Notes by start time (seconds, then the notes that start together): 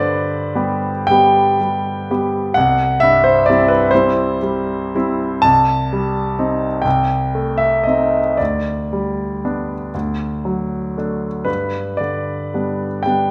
Already playing: G2 B4 C5 D5
0.00 D3
0.55 G3 B3 G4
1.07 G3 G5
1.11 B3 G4
1.61 G3
2.11 G3 B3 G4
2.54 C2 F#5
3.00 G2 E5
3.24 C5
3.46 G3 C4 D5
3.50 E4
3.68 B4
3.91 G3 C5
3.95 C4 E4
4.43 G3
4.95 G3 C4 E4
5.42 C2 A5
5.93 G3
6.39 C4 D#4
6.82 C2 G5
7.35 A3
7.58 E5
7.84 C4 D#5
7.88 D#4
8.37 D2 D5
8.93 G3
9.45 B3 D4
9.95 D2
10.45 F#3
10.98 A3 D4
11.45 G2 B4
11.97 D3 D5
12.54 G3 B3 D4
13.03 G3 G5
13.07 B3 D4